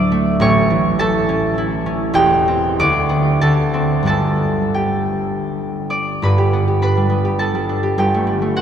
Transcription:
0.00 0.44 D2 medium
0.00 0.40 A2 medium
0.00 0.43 F#3 medium
0.00 0.11 A3 medium
0.00 0.44 D4 medium
0.00 0.99 A4 medium
0.00 0.45 D5 medium
0.00 2.81 E5 medium
0.00 0.98 A5 loud
0.00 0.44 D6 loud
0.00 0.23 E6 loud
0.12 0.98 A3 medium
0.40 2.16 A1 medium
0.40 2.17 A2 medium
0.40 2.18 C#5 medium
0.40 2.17 C#6 loud
0.70 2.17 E3 medium
0.99 2.17 A3 medium
0.99 2.18 A4 loud
0.99 2.17 A5 loud
1.29 1.85 C#4 medium
1.58 2.81 E4 medium
1.86 2.17 C#4 medium
2.13 2.80 E1 medium
2.13 2.81 E2 medium
2.13 3.43 G4 medium
2.13 3.43 G5 loud
2.48 2.82 C4 medium
2.79 3.41 D2 medium
2.79 5.89 D5 medium
2.79 5.89 D6 loud
3.09 3.43 B3 medium
3.09 3.73 D4 medium
3.41 4.11 D2 medium
3.41 4.08 A4 medium
3.41 4.06 A5 loud
3.73 4.11 C4 medium
3.73 4.05 D4 medium
4.03 6.21 G1 medium
4.03 6.22 G2 medium
4.03 6.96 G3 soft
4.03 6.52 B3 medium
4.03 6.81 D4 soft
4.07 6.26 A4 medium
4.07 6.25 A5 medium
4.74 6.37 G4 medium
4.74 7.97 G5 medium
5.90 8.02 D5 medium
5.90 8.02 D6 loud
6.22 7.97 G1 medium
6.22 7.97 G2 medium
6.22 6.82 B4 medium
6.22 6.81 B5 medium
6.38 6.67 G4 medium
6.53 7.08 B3 medium
6.68 7.24 G4 soft
6.82 7.68 D4 medium
6.82 8.01 B4 medium
6.82 8.00 B5 loud
6.97 7.54 G3 medium
7.10 7.38 B3 medium
7.25 7.82 G4 medium
7.39 8.00 B3 medium
7.39 8.62 A4 medium
7.39 8.38 A5 medium
7.55 8.26 G3 medium
7.69 8.01 D4 medium
7.83 7.98 G4 medium
7.98 8.62 G1 medium
7.98 8.62 G2 medium
7.98 8.62 G4 medium
7.98 8.62 G5 medium
8.14 8.41 A3 medium
8.27 8.62 G3 medium
8.42 8.62 A3 medium
8.56 8.62 C4 medium
8.56 8.62 F#4 medium
8.56 8.62 F#5 loud

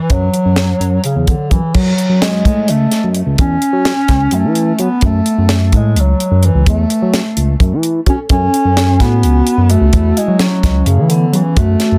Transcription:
0.00 0.13 E3 medium
0.10 0.29 F#2 medium
0.10 1.04 F#3 medium
0.10 kick medium
0.10 closed hi-hat medium
0.34 closed hi-hat medium
0.45 0.74 F#2 medium
0.56 snare medium
0.56 closed hi-hat medium
0.80 0.99 F#2 medium
0.80 closed hi-hat medium
1.04 1.29 C#3 medium
1.04 closed hi-hat medium
1.16 1.35 E2 medium
1.27 1.52 D3 medium
1.27 kick medium
1.27 closed hi-hat medium
1.51 1.61 F#2 medium
1.51 1.76 E3 medium
1.51 kick medium
1.51 closed hi-hat soft
1.74 1.93 F#2 medium
1.74 2.23 F#3 medium
1.74 kick medium
1.74 crash medium
1.98 closed hi-hat medium
2.09 2.47 F#2 medium
2.21 2.71 G#3 loud
2.21 snare loud
2.21 closed hi-hat medium
2.45 2.70 A2 medium
2.45 kick medium
2.45 closed hi-hat medium
2.68 2.87 C#2 medium
2.68 3.16 A3 medium
2.68 closed hi-hat medium
2.92 snare soft
2.92 closed hi-hat medium
3.04 3.22 F#2 medium
3.15 closed hi-hat soft
3.26 3.36 C#2 medium
3.38 3.57 E2 medium
3.38 4.36 C#4 loud
3.38 kick medium
3.38 closed hi-hat medium
3.62 closed hi-hat medium
3.73 3.92 F#3 medium
3.85 snare loud
3.85 closed hi-hat medium
4.08 4.28 C#2 medium
4.08 kick medium
4.08 snare soft
4.08 closed hi-hat medium
4.31 4.46 F#2 loud
4.31 4.83 A3 medium
4.31 closed hi-hat medium
4.45 4.72 E3 medium
4.55 closed hi-hat medium
4.79 4.89 F#3 medium
4.79 5.04 B3 medium
4.79 closed hi-hat medium
5.01 5.21 F#2 medium
5.01 kick medium
5.01 closed hi-hat medium
5.05 5.77 A3 loud
5.26 closed hi-hat medium
5.38 5.74 F#2 medium
5.49 snare loud
5.49 closed hi-hat medium
5.72 5.96 A2 medium
5.72 6.02 G#3 medium
5.72 kick medium
5.72 closed hi-hat medium
5.95 6.14 C#2 medium
5.95 closed hi-hat medium
6.00 6.47 F#3 medium
6.20 closed hi-hat medium
6.31 6.50 F#2 medium
6.43 6.68 E3 medium
6.43 closed hi-hat medium
6.55 6.64 C#2 medium
6.66 6.85 E2 loud
6.66 7.57 A3 medium
6.66 kick medium
6.66 closed hi-hat medium
6.90 closed hi-hat medium
7.02 7.21 F#3 medium
7.14 snare loud
7.14 closed hi-hat medium
7.37 7.55 C#2 medium
7.37 closed hi-hat medium
7.60 7.74 F#2 loud
7.60 kick medium
7.60 closed hi-hat medium
7.73 8.00 E3 medium
7.83 closed hi-hat medium
8.06 8.16 F#3 medium
8.06 8.19 C#4 medium
8.06 8.18 A4 medium
8.06 kick medium
8.06 closed hi-hat medium
8.29 8.48 F#2 loud
8.29 9.03 C#4 loud
8.29 8.97 A4 medium
8.29 kick medium
8.29 closed hi-hat medium
8.54 closed hi-hat medium
8.65 9.02 F#2 medium
8.77 snare loud
8.77 closed hi-hat medium
9.00 9.24 A2 loud
9.00 9.72 B3 medium
9.00 9.68 F#4 medium
9.00 kick medium
9.00 snare soft
9.00 closed hi-hat medium
9.23 9.42 C#2 loud
9.23 closed hi-hat medium
9.47 closed hi-hat medium
9.57 9.77 F#2 medium
9.69 10.19 A3 loud
9.69 10.17 F#4 medium
9.69 closed hi-hat medium
9.81 9.91 C#2 medium
9.93 10.12 E2 medium
9.93 kick loud
9.93 closed hi-hat medium
10.17 10.41 G#3 medium
10.17 10.40 E4 medium
10.17 closed hi-hat medium
10.28 10.47 F#3 medium
10.39 10.88 F#3 medium
10.39 10.87 C#4 medium
10.39 snare loud
10.39 closed hi-hat medium
10.63 10.82 C#2 medium
10.63 kick medium
10.63 snare soft
10.63 closed hi-hat medium
10.86 10.99 F#2 loud
10.86 11.11 C#3 medium
10.86 11.11 A3 medium
10.86 closed hi-hat medium
10.98 11.26 E3 medium
11.09 11.37 D3 medium
11.09 11.34 B3 medium
11.09 closed hi-hat medium
11.33 11.60 E3 medium
11.33 11.42 F#3 medium
11.33 11.57 C#4 medium
11.33 closed hi-hat medium
11.57 11.76 F#2 medium
11.57 11.98 A3 loud
11.57 11.98 F#4 medium
11.57 kick medium
11.57 closed hi-hat medium
11.80 snare soft
11.80 closed hi-hat medium
11.92 11.98 F#2 medium

